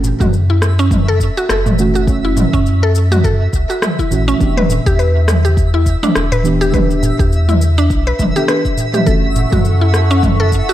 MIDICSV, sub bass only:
0, 0, Header, 1, 2, 480
1, 0, Start_track
1, 0, Tempo, 582524
1, 1711, Time_signature, 4, 2, 24, 8
1, 8845, End_track
2, 0, Start_track
2, 0, Title_t, "Sub bass"
2, 0, Program_c, 0, 38
2, 0, Note_on_c, 0, 30, 86
2, 109, Note_off_c, 0, 30, 0
2, 168, Note_on_c, 0, 42, 103
2, 1069, Note_off_c, 0, 42, 0
2, 1232, Note_on_c, 0, 30, 88
2, 2030, Note_off_c, 0, 30, 0
2, 2088, Note_on_c, 0, 42, 103
2, 2867, Note_off_c, 0, 42, 0
2, 2910, Note_on_c, 0, 37, 78
2, 3011, Note_off_c, 0, 37, 0
2, 3390, Note_on_c, 0, 33, 77
2, 3575, Note_off_c, 0, 33, 0
2, 3630, Note_on_c, 0, 28, 88
2, 3949, Note_off_c, 0, 28, 0
2, 4008, Note_on_c, 0, 40, 95
2, 4909, Note_off_c, 0, 40, 0
2, 5073, Note_on_c, 0, 28, 91
2, 5870, Note_off_c, 0, 28, 0
2, 5928, Note_on_c, 0, 40, 106
2, 6507, Note_off_c, 0, 40, 0
2, 6511, Note_on_c, 0, 35, 92
2, 6696, Note_off_c, 0, 35, 0
2, 6751, Note_on_c, 0, 31, 82
2, 6851, Note_off_c, 0, 31, 0
2, 7472, Note_on_c, 0, 30, 95
2, 7790, Note_off_c, 0, 30, 0
2, 7848, Note_on_c, 0, 42, 105
2, 8749, Note_off_c, 0, 42, 0
2, 8845, End_track
0, 0, End_of_file